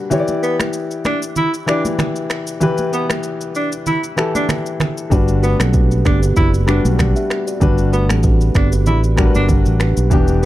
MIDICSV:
0, 0, Header, 1, 7, 480
1, 0, Start_track
1, 0, Key_signature, 1, "major"
1, 0, Tempo, 625000
1, 88, Time_signature, 4, 2, 24, 8
1, 8027, End_track
2, 0, Start_track
2, 0, Title_t, "Grand piano"
2, 0, Program_c, 0, 0
2, 0, Control_c, 0, 64, 127
2, 0, Note_on_c, 0, 55, 74
2, 0, Note_on_c, 0, 62, 64
2, 0, Note_on_c, 0, 66, 65
2, 0, Note_on_c, 0, 70, 67
2, 0, Note_on_c, 0, 71, 79
2, 77, Note_on_c, 0, 52, 85
2, 84, Note_on_c, 0, 64, 77
2, 89, Note_on_c, 0, 67, 81
2, 96, Control_c, 0, 64, 0
2, 97, Note_on_c, 0, 73, 77
2, 98, Note_off_c, 0, 66, 0
2, 100, Note_off_c, 0, 55, 0
2, 103, Note_off_c, 0, 62, 0
2, 103, Note_off_c, 0, 70, 0
2, 104, Note_off_c, 0, 71, 0
2, 146, Note_on_c, 0, 74, 93
2, 147, Note_off_c, 0, 73, 0
2, 223, Control_c, 0, 64, 127
2, 932, Note_off_c, 0, 52, 0
2, 935, Note_off_c, 0, 64, 0
2, 938, Note_off_c, 0, 67, 0
2, 966, Note_off_c, 0, 74, 0
2, 1277, Note_on_c, 0, 52, 74
2, 1284, Note_on_c, 0, 64, 67
2, 1290, Note_on_c, 0, 67, 67
2, 1296, Note_on_c, 0, 74, 80
2, 1920, Note_off_c, 0, 52, 0
2, 1923, Note_off_c, 0, 64, 0
2, 1926, Note_off_c, 0, 67, 0
2, 1929, Note_off_c, 0, 74, 0
2, 1999, Note_on_c, 0, 52, 88
2, 2007, Note_on_c, 0, 64, 74
2, 2012, Note_on_c, 0, 67, 80
2, 2019, Note_on_c, 0, 71, 97
2, 2853, Note_off_c, 0, 52, 0
2, 2857, Note_off_c, 0, 64, 0
2, 2859, Note_off_c, 0, 67, 0
2, 2863, Note_off_c, 0, 71, 0
2, 3198, Note_on_c, 0, 52, 72
2, 3205, Note_on_c, 0, 64, 70
2, 3212, Note_on_c, 0, 67, 65
2, 3218, Note_on_c, 0, 69, 82
2, 3840, Note_off_c, 0, 52, 0
2, 3844, Note_off_c, 0, 64, 0
2, 3847, Note_off_c, 0, 67, 0
2, 3850, Note_off_c, 0, 69, 0
2, 3918, Note_on_c, 0, 55, 81
2, 3924, Note_on_c, 0, 62, 76
2, 3930, Note_on_c, 0, 66, 77
2, 3937, Control_c, 0, 64, 0
2, 3938, Note_on_c, 0, 71, 92
2, 4080, Control_c, 0, 64, 127
2, 4772, Note_off_c, 0, 55, 0
2, 4775, Note_off_c, 0, 62, 0
2, 4778, Note_off_c, 0, 66, 0
2, 4782, Note_off_c, 0, 71, 0
2, 5119, Note_on_c, 0, 55, 74
2, 5125, Note_on_c, 0, 62, 67
2, 5132, Note_on_c, 0, 66, 68
2, 5139, Note_on_c, 0, 71, 81
2, 5761, Note_off_c, 0, 55, 0
2, 5764, Note_off_c, 0, 62, 0
2, 5767, Note_off_c, 0, 66, 0
2, 5771, Note_off_c, 0, 71, 0
2, 5839, Note_on_c, 0, 55, 85
2, 5845, Note_on_c, 0, 62, 82
2, 5852, Note_on_c, 0, 66, 80
2, 5858, Note_on_c, 0, 71, 98
2, 6693, Note_off_c, 0, 55, 0
2, 6696, Note_off_c, 0, 62, 0
2, 6699, Note_off_c, 0, 66, 0
2, 6702, Note_off_c, 0, 71, 0
2, 7038, Note_on_c, 0, 55, 76
2, 7045, Note_on_c, 0, 62, 69
2, 7052, Note_on_c, 0, 66, 67
2, 7058, Note_on_c, 0, 70, 66
2, 7107, Note_on_c, 0, 71, 84
2, 7108, Note_off_c, 0, 70, 0
2, 7680, Note_off_c, 0, 55, 0
2, 7684, Note_off_c, 0, 62, 0
2, 7687, Note_off_c, 0, 66, 0
2, 7715, Note_off_c, 0, 71, 0
2, 7757, Note_on_c, 0, 52, 85
2, 7764, Note_on_c, 0, 59, 82
2, 7771, Note_on_c, 0, 62, 77
2, 7777, Note_on_c, 0, 67, 96
2, 7778, Control_c, 0, 64, 0
2, 7895, Control_c, 0, 64, 127
2, 8027, Note_off_c, 0, 52, 0
2, 8027, Note_off_c, 0, 59, 0
2, 8027, Note_off_c, 0, 62, 0
2, 8027, Note_off_c, 0, 67, 0
2, 8027, End_track
3, 0, Start_track
3, 0, Title_t, "Kalimba"
3, 0, Program_c, 1, 108
3, 4168, Note_on_c, 1, 66, 75
3, 4174, Note_on_c, 1, 57, 60
3, 4259, Note_off_c, 1, 66, 0
3, 4263, Note_off_c, 1, 57, 0
3, 4300, Note_on_c, 1, 69, 70
3, 4307, Note_on_c, 1, 60, 56
3, 4374, Note_off_c, 1, 69, 0
3, 4379, Note_off_c, 1, 60, 0
3, 4407, Note_on_c, 1, 71, 77
3, 4413, Note_on_c, 1, 62, 59
3, 4498, Note_off_c, 1, 71, 0
3, 4502, Note_off_c, 1, 62, 0
3, 4648, Note_on_c, 1, 67, 74
3, 4654, Note_on_c, 1, 59, 59
3, 4739, Note_off_c, 1, 67, 0
3, 4742, Note_off_c, 1, 59, 0
3, 4779, Note_on_c, 1, 71, 78
3, 4785, Note_on_c, 1, 62, 58
3, 4854, Note_off_c, 1, 71, 0
3, 4857, Note_off_c, 1, 62, 0
3, 4887, Note_on_c, 1, 74, 72
3, 4892, Note_on_c, 1, 66, 59
3, 5052, Note_off_c, 1, 74, 0
3, 5056, Note_off_c, 1, 66, 0
3, 5500, Note_on_c, 1, 76, 70
3, 5506, Note_on_c, 1, 67, 55
3, 5574, Note_off_c, 1, 76, 0
3, 5578, Note_off_c, 1, 67, 0
3, 5740, Note_on_c, 1, 74, 68
3, 5746, Note_on_c, 1, 66, 52
3, 5814, Note_off_c, 1, 74, 0
3, 5818, Note_off_c, 1, 66, 0
3, 6089, Note_on_c, 1, 66, 82
3, 6095, Note_on_c, 1, 57, 64
3, 6179, Note_off_c, 1, 66, 0
3, 6183, Note_off_c, 1, 57, 0
3, 6221, Note_on_c, 1, 69, 69
3, 6227, Note_on_c, 1, 60, 55
3, 6295, Note_off_c, 1, 69, 0
3, 6299, Note_off_c, 1, 60, 0
3, 6329, Note_on_c, 1, 71, 69
3, 6336, Note_on_c, 1, 62, 54
3, 6419, Note_off_c, 1, 71, 0
3, 6424, Note_off_c, 1, 62, 0
3, 6569, Note_on_c, 1, 67, 73
3, 6575, Note_on_c, 1, 59, 57
3, 6659, Note_off_c, 1, 67, 0
3, 6663, Note_off_c, 1, 59, 0
3, 6701, Note_on_c, 1, 71, 69
3, 6706, Note_on_c, 1, 62, 58
3, 6775, Note_off_c, 1, 71, 0
3, 6778, Note_off_c, 1, 62, 0
3, 6810, Note_on_c, 1, 74, 84
3, 6815, Note_on_c, 1, 66, 65
3, 6974, Note_off_c, 1, 74, 0
3, 6978, Note_off_c, 1, 66, 0
3, 7529, Note_on_c, 1, 71, 76
3, 7535, Note_on_c, 1, 62, 60
3, 7619, Note_off_c, 1, 71, 0
3, 7623, Note_off_c, 1, 62, 0
3, 8027, End_track
4, 0, Start_track
4, 0, Title_t, "Tenor saxophone"
4, 0, Program_c, 2, 66
4, 331, Note_on_c, 2, 59, 72
4, 442, Note_off_c, 2, 59, 0
4, 811, Note_on_c, 2, 62, 77
4, 921, Note_off_c, 2, 62, 0
4, 1051, Note_on_c, 2, 64, 82
4, 1162, Note_off_c, 2, 64, 0
4, 1292, Note_on_c, 2, 62, 68
4, 1402, Note_off_c, 2, 62, 0
4, 2252, Note_on_c, 2, 59, 78
4, 2362, Note_off_c, 2, 59, 0
4, 2733, Note_on_c, 2, 62, 71
4, 2843, Note_off_c, 2, 62, 0
4, 2972, Note_on_c, 2, 64, 75
4, 3082, Note_off_c, 2, 64, 0
4, 3344, Note_on_c, 2, 62, 73
4, 3434, Note_off_c, 2, 62, 0
4, 4173, Note_on_c, 2, 59, 75
4, 4283, Note_off_c, 2, 59, 0
4, 4653, Note_on_c, 2, 62, 75
4, 4763, Note_off_c, 2, 62, 0
4, 4892, Note_on_c, 2, 64, 79
4, 5002, Note_off_c, 2, 64, 0
4, 5132, Note_on_c, 2, 62, 67
4, 5242, Note_off_c, 2, 62, 0
4, 6092, Note_on_c, 2, 59, 76
4, 6202, Note_off_c, 2, 59, 0
4, 6572, Note_on_c, 2, 62, 75
4, 6682, Note_off_c, 2, 62, 0
4, 6810, Note_on_c, 2, 64, 77
4, 6921, Note_off_c, 2, 64, 0
4, 7186, Note_on_c, 2, 62, 76
4, 7275, Note_off_c, 2, 62, 0
4, 8027, End_track
5, 0, Start_track
5, 0, Title_t, "Fingered electric bass"
5, 0, Program_c, 3, 33
5, 3929, Note_on_c, 3, 31, 107
5, 4254, Note_off_c, 3, 31, 0
5, 4298, Note_on_c, 3, 35, 86
5, 4648, Note_on_c, 3, 31, 93
5, 4660, Note_off_c, 3, 35, 0
5, 4858, Note_off_c, 3, 31, 0
5, 4889, Note_on_c, 3, 30, 87
5, 5215, Note_off_c, 3, 30, 0
5, 5260, Note_on_c, 3, 35, 91
5, 5471, Note_off_c, 3, 35, 0
5, 5848, Note_on_c, 3, 31, 102
5, 6218, Note_off_c, 3, 31, 0
5, 6218, Note_on_c, 3, 33, 91
5, 6524, Note_off_c, 3, 33, 0
5, 6567, Note_on_c, 3, 31, 91
5, 6808, Note_off_c, 3, 31, 0
5, 6808, Note_on_c, 3, 33, 101
5, 7134, Note_off_c, 3, 33, 0
5, 7180, Note_on_c, 3, 31, 82
5, 7390, Note_off_c, 3, 31, 0
5, 7419, Note_on_c, 3, 33, 88
5, 7630, Note_off_c, 3, 33, 0
5, 7659, Note_on_c, 3, 35, 86
5, 7754, Note_off_c, 3, 35, 0
5, 7765, Note_on_c, 3, 28, 108
5, 8027, Note_off_c, 3, 28, 0
5, 8027, End_track
6, 0, Start_track
6, 0, Title_t, "Downlifter"
6, 0, Program_c, 4, 103
6, 0, Note_on_c, 4, 60, 83
6, 87, Note_off_c, 4, 60, 0
6, 8027, End_track
7, 0, Start_track
7, 0, Title_t, "Drums"
7, 86, Note_on_c, 9, 82, 82
7, 88, Note_on_c, 9, 64, 78
7, 163, Note_off_c, 9, 82, 0
7, 165, Note_off_c, 9, 64, 0
7, 214, Note_on_c, 9, 82, 54
7, 220, Note_on_c, 9, 63, 52
7, 291, Note_off_c, 9, 82, 0
7, 296, Note_off_c, 9, 63, 0
7, 333, Note_on_c, 9, 82, 59
7, 409, Note_off_c, 9, 82, 0
7, 457, Note_on_c, 9, 37, 103
7, 459, Note_on_c, 9, 63, 74
7, 462, Note_on_c, 9, 82, 93
7, 464, Note_on_c, 9, 26, 85
7, 534, Note_off_c, 9, 37, 0
7, 536, Note_off_c, 9, 63, 0
7, 539, Note_off_c, 9, 82, 0
7, 541, Note_off_c, 9, 26, 0
7, 562, Note_on_c, 9, 82, 72
7, 639, Note_off_c, 9, 82, 0
7, 699, Note_on_c, 9, 82, 51
7, 776, Note_off_c, 9, 82, 0
7, 805, Note_on_c, 9, 63, 74
7, 806, Note_on_c, 9, 82, 49
7, 808, Note_on_c, 9, 37, 80
7, 815, Note_on_c, 9, 26, 65
7, 882, Note_off_c, 9, 63, 0
7, 882, Note_off_c, 9, 82, 0
7, 885, Note_off_c, 9, 37, 0
7, 891, Note_off_c, 9, 26, 0
7, 941, Note_on_c, 9, 82, 95
7, 1018, Note_off_c, 9, 82, 0
7, 1045, Note_on_c, 9, 64, 65
7, 1045, Note_on_c, 9, 82, 76
7, 1122, Note_off_c, 9, 64, 0
7, 1122, Note_off_c, 9, 82, 0
7, 1182, Note_on_c, 9, 82, 52
7, 1259, Note_off_c, 9, 82, 0
7, 1288, Note_on_c, 9, 82, 50
7, 1289, Note_on_c, 9, 37, 100
7, 1295, Note_on_c, 9, 26, 84
7, 1365, Note_off_c, 9, 82, 0
7, 1366, Note_off_c, 9, 37, 0
7, 1372, Note_off_c, 9, 26, 0
7, 1421, Note_on_c, 9, 63, 81
7, 1422, Note_on_c, 9, 82, 86
7, 1498, Note_off_c, 9, 63, 0
7, 1499, Note_off_c, 9, 82, 0
7, 1525, Note_on_c, 9, 63, 69
7, 1525, Note_on_c, 9, 64, 70
7, 1528, Note_on_c, 9, 37, 96
7, 1529, Note_on_c, 9, 82, 78
7, 1534, Note_on_c, 9, 26, 77
7, 1602, Note_off_c, 9, 63, 0
7, 1602, Note_off_c, 9, 64, 0
7, 1605, Note_off_c, 9, 37, 0
7, 1605, Note_off_c, 9, 82, 0
7, 1611, Note_off_c, 9, 26, 0
7, 1657, Note_on_c, 9, 82, 50
7, 1734, Note_off_c, 9, 82, 0
7, 1766, Note_on_c, 9, 37, 94
7, 1767, Note_on_c, 9, 82, 53
7, 1772, Note_on_c, 9, 26, 73
7, 1843, Note_off_c, 9, 37, 0
7, 1844, Note_off_c, 9, 82, 0
7, 1849, Note_off_c, 9, 26, 0
7, 1898, Note_on_c, 9, 82, 93
7, 1975, Note_off_c, 9, 82, 0
7, 2005, Note_on_c, 9, 82, 78
7, 2007, Note_on_c, 9, 64, 82
7, 2082, Note_off_c, 9, 82, 0
7, 2084, Note_off_c, 9, 64, 0
7, 2134, Note_on_c, 9, 82, 55
7, 2141, Note_on_c, 9, 63, 51
7, 2211, Note_off_c, 9, 82, 0
7, 2218, Note_off_c, 9, 63, 0
7, 2252, Note_on_c, 9, 82, 61
7, 2329, Note_off_c, 9, 82, 0
7, 2378, Note_on_c, 9, 37, 106
7, 2380, Note_on_c, 9, 63, 70
7, 2382, Note_on_c, 9, 82, 89
7, 2384, Note_on_c, 9, 26, 81
7, 2455, Note_off_c, 9, 37, 0
7, 2457, Note_off_c, 9, 63, 0
7, 2459, Note_off_c, 9, 82, 0
7, 2461, Note_off_c, 9, 26, 0
7, 2483, Note_on_c, 9, 82, 73
7, 2559, Note_off_c, 9, 82, 0
7, 2620, Note_on_c, 9, 82, 51
7, 2696, Note_off_c, 9, 82, 0
7, 2727, Note_on_c, 9, 82, 50
7, 2804, Note_off_c, 9, 82, 0
7, 2860, Note_on_c, 9, 82, 96
7, 2937, Note_off_c, 9, 82, 0
7, 2968, Note_on_c, 9, 64, 64
7, 2968, Note_on_c, 9, 82, 76
7, 3044, Note_off_c, 9, 82, 0
7, 3045, Note_off_c, 9, 64, 0
7, 3101, Note_on_c, 9, 82, 50
7, 3178, Note_off_c, 9, 82, 0
7, 3208, Note_on_c, 9, 37, 103
7, 3208, Note_on_c, 9, 82, 51
7, 3215, Note_on_c, 9, 26, 79
7, 3285, Note_off_c, 9, 37, 0
7, 3285, Note_off_c, 9, 82, 0
7, 3292, Note_off_c, 9, 26, 0
7, 3341, Note_on_c, 9, 63, 81
7, 3344, Note_on_c, 9, 82, 84
7, 3418, Note_off_c, 9, 63, 0
7, 3421, Note_off_c, 9, 82, 0
7, 3446, Note_on_c, 9, 63, 73
7, 3446, Note_on_c, 9, 64, 74
7, 3450, Note_on_c, 9, 37, 94
7, 3450, Note_on_c, 9, 82, 80
7, 3456, Note_on_c, 9, 26, 77
7, 3523, Note_off_c, 9, 63, 0
7, 3523, Note_off_c, 9, 64, 0
7, 3527, Note_off_c, 9, 37, 0
7, 3527, Note_off_c, 9, 82, 0
7, 3533, Note_off_c, 9, 26, 0
7, 3581, Note_on_c, 9, 82, 51
7, 3658, Note_off_c, 9, 82, 0
7, 3686, Note_on_c, 9, 64, 84
7, 3689, Note_on_c, 9, 37, 95
7, 3691, Note_on_c, 9, 82, 54
7, 3696, Note_on_c, 9, 26, 73
7, 3763, Note_off_c, 9, 64, 0
7, 3766, Note_off_c, 9, 37, 0
7, 3768, Note_off_c, 9, 82, 0
7, 3773, Note_off_c, 9, 26, 0
7, 3821, Note_on_c, 9, 82, 91
7, 3898, Note_off_c, 9, 82, 0
7, 3928, Note_on_c, 9, 36, 105
7, 3929, Note_on_c, 9, 64, 82
7, 3930, Note_on_c, 9, 82, 85
7, 4005, Note_off_c, 9, 36, 0
7, 4006, Note_off_c, 9, 64, 0
7, 4007, Note_off_c, 9, 82, 0
7, 4057, Note_on_c, 9, 82, 52
7, 4061, Note_on_c, 9, 63, 53
7, 4134, Note_off_c, 9, 82, 0
7, 4137, Note_off_c, 9, 63, 0
7, 4174, Note_on_c, 9, 82, 61
7, 4251, Note_off_c, 9, 82, 0
7, 4299, Note_on_c, 9, 37, 105
7, 4303, Note_on_c, 9, 63, 70
7, 4303, Note_on_c, 9, 82, 93
7, 4305, Note_on_c, 9, 26, 88
7, 4376, Note_off_c, 9, 37, 0
7, 4379, Note_off_c, 9, 63, 0
7, 4380, Note_off_c, 9, 82, 0
7, 4382, Note_off_c, 9, 26, 0
7, 4404, Note_on_c, 9, 82, 70
7, 4409, Note_on_c, 9, 36, 92
7, 4481, Note_off_c, 9, 82, 0
7, 4486, Note_off_c, 9, 36, 0
7, 4542, Note_on_c, 9, 82, 49
7, 4619, Note_off_c, 9, 82, 0
7, 4648, Note_on_c, 9, 36, 87
7, 4648, Note_on_c, 9, 82, 50
7, 4649, Note_on_c, 9, 63, 77
7, 4651, Note_on_c, 9, 37, 78
7, 4657, Note_on_c, 9, 26, 63
7, 4725, Note_off_c, 9, 36, 0
7, 4725, Note_off_c, 9, 82, 0
7, 4726, Note_off_c, 9, 63, 0
7, 4728, Note_off_c, 9, 37, 0
7, 4734, Note_off_c, 9, 26, 0
7, 4784, Note_on_c, 9, 82, 91
7, 4861, Note_off_c, 9, 82, 0
7, 4888, Note_on_c, 9, 82, 73
7, 4889, Note_on_c, 9, 36, 92
7, 4889, Note_on_c, 9, 64, 68
7, 4965, Note_off_c, 9, 82, 0
7, 4966, Note_off_c, 9, 36, 0
7, 4966, Note_off_c, 9, 64, 0
7, 5023, Note_on_c, 9, 82, 54
7, 5100, Note_off_c, 9, 82, 0
7, 5127, Note_on_c, 9, 82, 51
7, 5128, Note_on_c, 9, 37, 98
7, 5135, Note_on_c, 9, 26, 81
7, 5204, Note_off_c, 9, 82, 0
7, 5205, Note_off_c, 9, 37, 0
7, 5211, Note_off_c, 9, 26, 0
7, 5263, Note_on_c, 9, 63, 86
7, 5263, Note_on_c, 9, 82, 84
7, 5340, Note_off_c, 9, 63, 0
7, 5340, Note_off_c, 9, 82, 0
7, 5367, Note_on_c, 9, 36, 86
7, 5368, Note_on_c, 9, 63, 73
7, 5368, Note_on_c, 9, 64, 75
7, 5370, Note_on_c, 9, 37, 97
7, 5370, Note_on_c, 9, 82, 79
7, 5376, Note_on_c, 9, 26, 73
7, 5444, Note_off_c, 9, 36, 0
7, 5445, Note_off_c, 9, 63, 0
7, 5445, Note_off_c, 9, 64, 0
7, 5447, Note_off_c, 9, 37, 0
7, 5447, Note_off_c, 9, 82, 0
7, 5453, Note_off_c, 9, 26, 0
7, 5500, Note_on_c, 9, 82, 53
7, 5577, Note_off_c, 9, 82, 0
7, 5609, Note_on_c, 9, 37, 93
7, 5611, Note_on_c, 9, 82, 52
7, 5616, Note_on_c, 9, 26, 75
7, 5686, Note_off_c, 9, 37, 0
7, 5688, Note_off_c, 9, 82, 0
7, 5693, Note_off_c, 9, 26, 0
7, 5741, Note_on_c, 9, 82, 92
7, 5818, Note_off_c, 9, 82, 0
7, 5847, Note_on_c, 9, 36, 104
7, 5848, Note_on_c, 9, 82, 84
7, 5851, Note_on_c, 9, 64, 80
7, 5924, Note_off_c, 9, 36, 0
7, 5925, Note_off_c, 9, 82, 0
7, 5927, Note_off_c, 9, 64, 0
7, 5975, Note_on_c, 9, 82, 55
7, 5983, Note_on_c, 9, 63, 53
7, 6052, Note_off_c, 9, 82, 0
7, 6060, Note_off_c, 9, 63, 0
7, 6092, Note_on_c, 9, 82, 60
7, 6169, Note_off_c, 9, 82, 0
7, 6216, Note_on_c, 9, 37, 100
7, 6221, Note_on_c, 9, 82, 93
7, 6222, Note_on_c, 9, 63, 72
7, 6223, Note_on_c, 9, 26, 83
7, 6293, Note_off_c, 9, 37, 0
7, 6298, Note_off_c, 9, 82, 0
7, 6299, Note_off_c, 9, 63, 0
7, 6300, Note_off_c, 9, 26, 0
7, 6322, Note_on_c, 9, 82, 72
7, 6328, Note_on_c, 9, 36, 94
7, 6399, Note_off_c, 9, 82, 0
7, 6404, Note_off_c, 9, 36, 0
7, 6458, Note_on_c, 9, 82, 51
7, 6535, Note_off_c, 9, 82, 0
7, 6566, Note_on_c, 9, 82, 51
7, 6567, Note_on_c, 9, 36, 92
7, 6568, Note_on_c, 9, 37, 82
7, 6575, Note_on_c, 9, 26, 65
7, 6642, Note_off_c, 9, 82, 0
7, 6644, Note_off_c, 9, 36, 0
7, 6645, Note_off_c, 9, 37, 0
7, 6651, Note_off_c, 9, 26, 0
7, 6700, Note_on_c, 9, 82, 93
7, 6777, Note_off_c, 9, 82, 0
7, 6806, Note_on_c, 9, 82, 76
7, 6807, Note_on_c, 9, 64, 66
7, 6883, Note_off_c, 9, 82, 0
7, 6884, Note_off_c, 9, 64, 0
7, 6941, Note_on_c, 9, 82, 52
7, 7018, Note_off_c, 9, 82, 0
7, 7046, Note_on_c, 9, 37, 100
7, 7046, Note_on_c, 9, 82, 50
7, 7049, Note_on_c, 9, 36, 99
7, 7053, Note_on_c, 9, 26, 82
7, 7123, Note_off_c, 9, 37, 0
7, 7123, Note_off_c, 9, 82, 0
7, 7125, Note_off_c, 9, 36, 0
7, 7130, Note_off_c, 9, 26, 0
7, 7179, Note_on_c, 9, 82, 87
7, 7181, Note_on_c, 9, 63, 82
7, 7256, Note_off_c, 9, 82, 0
7, 7258, Note_off_c, 9, 63, 0
7, 7285, Note_on_c, 9, 36, 89
7, 7287, Note_on_c, 9, 63, 76
7, 7287, Note_on_c, 9, 64, 74
7, 7288, Note_on_c, 9, 82, 77
7, 7362, Note_off_c, 9, 36, 0
7, 7363, Note_off_c, 9, 63, 0
7, 7363, Note_off_c, 9, 64, 0
7, 7364, Note_off_c, 9, 82, 0
7, 7416, Note_on_c, 9, 82, 53
7, 7493, Note_off_c, 9, 82, 0
7, 7525, Note_on_c, 9, 37, 92
7, 7526, Note_on_c, 9, 82, 52
7, 7531, Note_on_c, 9, 26, 76
7, 7602, Note_off_c, 9, 37, 0
7, 7603, Note_off_c, 9, 82, 0
7, 7608, Note_off_c, 9, 26, 0
7, 7657, Note_on_c, 9, 82, 93
7, 7734, Note_off_c, 9, 82, 0
7, 7766, Note_on_c, 9, 36, 108
7, 7766, Note_on_c, 9, 82, 84
7, 7768, Note_on_c, 9, 64, 84
7, 7842, Note_off_c, 9, 36, 0
7, 7842, Note_off_c, 9, 82, 0
7, 7845, Note_off_c, 9, 64, 0
7, 7894, Note_on_c, 9, 82, 56
7, 7900, Note_on_c, 9, 63, 54
7, 7970, Note_off_c, 9, 82, 0
7, 7977, Note_off_c, 9, 63, 0
7, 8027, End_track
0, 0, End_of_file